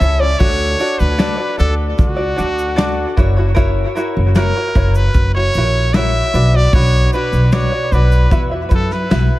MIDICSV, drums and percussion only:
0, 0, Header, 1, 2, 480
1, 0, Start_track
1, 0, Tempo, 790514
1, 247, Time_signature, 4, 2, 24, 8
1, 5702, End_track
2, 0, Start_track
2, 0, Title_t, "Drums"
2, 6, Note_on_c, 9, 82, 52
2, 67, Note_off_c, 9, 82, 0
2, 242, Note_on_c, 9, 82, 53
2, 245, Note_on_c, 9, 36, 99
2, 302, Note_off_c, 9, 82, 0
2, 306, Note_off_c, 9, 36, 0
2, 481, Note_on_c, 9, 82, 44
2, 542, Note_off_c, 9, 82, 0
2, 604, Note_on_c, 9, 82, 50
2, 664, Note_off_c, 9, 82, 0
2, 723, Note_on_c, 9, 82, 72
2, 725, Note_on_c, 9, 38, 105
2, 784, Note_off_c, 9, 82, 0
2, 786, Note_off_c, 9, 38, 0
2, 967, Note_on_c, 9, 82, 53
2, 1027, Note_off_c, 9, 82, 0
2, 1205, Note_on_c, 9, 82, 61
2, 1207, Note_on_c, 9, 36, 101
2, 1265, Note_off_c, 9, 82, 0
2, 1267, Note_off_c, 9, 36, 0
2, 1447, Note_on_c, 9, 82, 59
2, 1508, Note_off_c, 9, 82, 0
2, 1569, Note_on_c, 9, 82, 64
2, 1630, Note_off_c, 9, 82, 0
2, 1689, Note_on_c, 9, 38, 115
2, 1689, Note_on_c, 9, 82, 75
2, 1750, Note_off_c, 9, 38, 0
2, 1750, Note_off_c, 9, 82, 0
2, 1927, Note_on_c, 9, 36, 92
2, 1931, Note_on_c, 9, 82, 46
2, 1988, Note_off_c, 9, 36, 0
2, 1992, Note_off_c, 9, 82, 0
2, 2164, Note_on_c, 9, 82, 55
2, 2166, Note_on_c, 9, 36, 95
2, 2224, Note_off_c, 9, 82, 0
2, 2227, Note_off_c, 9, 36, 0
2, 2408, Note_on_c, 9, 82, 46
2, 2468, Note_off_c, 9, 82, 0
2, 2642, Note_on_c, 9, 82, 71
2, 2644, Note_on_c, 9, 38, 107
2, 2703, Note_off_c, 9, 82, 0
2, 2705, Note_off_c, 9, 38, 0
2, 2886, Note_on_c, 9, 36, 95
2, 2887, Note_on_c, 9, 82, 50
2, 2947, Note_off_c, 9, 36, 0
2, 2948, Note_off_c, 9, 82, 0
2, 3005, Note_on_c, 9, 82, 63
2, 3065, Note_off_c, 9, 82, 0
2, 3122, Note_on_c, 9, 82, 59
2, 3124, Note_on_c, 9, 36, 101
2, 3183, Note_off_c, 9, 82, 0
2, 3185, Note_off_c, 9, 36, 0
2, 3364, Note_on_c, 9, 82, 55
2, 3425, Note_off_c, 9, 82, 0
2, 3607, Note_on_c, 9, 38, 105
2, 3607, Note_on_c, 9, 82, 70
2, 3667, Note_off_c, 9, 82, 0
2, 3668, Note_off_c, 9, 38, 0
2, 3851, Note_on_c, 9, 82, 47
2, 3911, Note_off_c, 9, 82, 0
2, 4087, Note_on_c, 9, 36, 105
2, 4087, Note_on_c, 9, 82, 55
2, 4147, Note_off_c, 9, 36, 0
2, 4148, Note_off_c, 9, 82, 0
2, 4327, Note_on_c, 9, 82, 46
2, 4387, Note_off_c, 9, 82, 0
2, 4449, Note_on_c, 9, 82, 51
2, 4509, Note_off_c, 9, 82, 0
2, 4567, Note_on_c, 9, 82, 78
2, 4569, Note_on_c, 9, 38, 102
2, 4628, Note_off_c, 9, 82, 0
2, 4630, Note_off_c, 9, 38, 0
2, 4810, Note_on_c, 9, 82, 50
2, 4871, Note_off_c, 9, 82, 0
2, 4929, Note_on_c, 9, 82, 56
2, 4990, Note_off_c, 9, 82, 0
2, 5048, Note_on_c, 9, 36, 103
2, 5050, Note_on_c, 9, 82, 57
2, 5109, Note_off_c, 9, 36, 0
2, 5110, Note_off_c, 9, 82, 0
2, 5288, Note_on_c, 9, 82, 59
2, 5289, Note_on_c, 9, 36, 90
2, 5348, Note_off_c, 9, 82, 0
2, 5350, Note_off_c, 9, 36, 0
2, 5410, Note_on_c, 9, 38, 35
2, 5470, Note_off_c, 9, 38, 0
2, 5532, Note_on_c, 9, 82, 72
2, 5533, Note_on_c, 9, 38, 115
2, 5593, Note_off_c, 9, 38, 0
2, 5593, Note_off_c, 9, 82, 0
2, 5702, End_track
0, 0, End_of_file